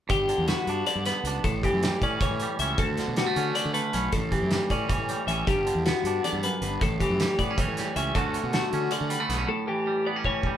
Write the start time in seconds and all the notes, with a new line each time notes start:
0.09 G1 G2 G4, kick, closed hi-hat
0.29 D3, closed hi-hat
0.38 E2
0.48 B3 F#4, snare, closed hi-hat
0.67 G2 D4, closed hi-hat
0.86 D3 D5, closed hi-hat
0.95 G2
1.05 B3 B4, snare, closed hi-hat
1.23 C#2 D4, closed hi-hat
1.44 A1 A2 A4, kick, closed hi-hat
1.63 E3 G4, kick, closed hi-hat
1.73 F#2
1.83 G3, snare, closed hi-hat
2.01 A2 C#4 D5, kick, closed hi-hat
2.21 E3 C#5, kick, closed hi-hat
2.30 A2
2.40 G3, closed hi-hat
2.59 C#2 C#4 E5, closed hi-hat
2.78 D2 A4, kick, closed hi-hat
2.97 D3, snare, closed hi-hat
3.08 B2
3.17 G3 F#4, snare, closed hi-hat
3.26 A3
3.36 D3 C#4, closed hi-hat
3.54 D3 D5, closed hi-hat
3.65 D3
3.74 A3 B4, closed hi-hat
3.93 B1 C#4, closed hi-hat
4.12 A1 A2 A4, kick, closed hi-hat
4.32 E3 G4, kick, closed hi-hat
4.42 F#2
4.51 G3, snare, closed hi-hat
4.70 A2 C#4 D5, kick, closed hi-hat
4.88 E3 C#5, kick, closed hi-hat
4.98 A2
5.09 G3, closed hi-hat
5.27 A1 C#4 E5, closed hi-hat
5.47 G1 G2 G4, kick, closed hi-hat
5.66 D3, closed hi-hat
5.75 E2
5.86 B3 F#4, snare, closed hi-hat
6.04 G2 D4, closed hi-hat
6.24 E2 D5, closed hi-hat
6.33 G2
6.43 F#2 B4, closed hi-hat
6.61 G1 G2, closed hi-hat
6.81 A1 A2 A4, kick, closed hi-hat
7.00 E3 G4, kick, closed hi-hat
7.09 F#2
7.20 G3, snare, closed hi-hat
7.38 A2 B3 D5, kick, closed hi-hat
7.50 C#4
7.58 E3 C#5, kick, closed hi-hat
7.68 A2
7.77 G3, snare, closed hi-hat
7.96 C#2 C#4 E5, closed hi-hat
8.14 D2 D3 A3 C#4 F#4 A4, kick, closed hi-hat
8.34 D3, closed hi-hat
8.43 B2
8.53 A3 F#4, snare, closed hi-hat
8.73 D3 C#4, closed hi-hat
8.91 D3 D5, closed hi-hat
9.01 D3
9.09 G3 B4, closed hi-hat
9.20 A3
9.29 B1 B3, snare, closed hi-hat
9.38 C#4
9.48 A2 A4
9.67 E3 G4
9.87 G3
10.06 B3 D5
10.16 C#4
10.24 E3 C#5, kick
10.43 G3, kick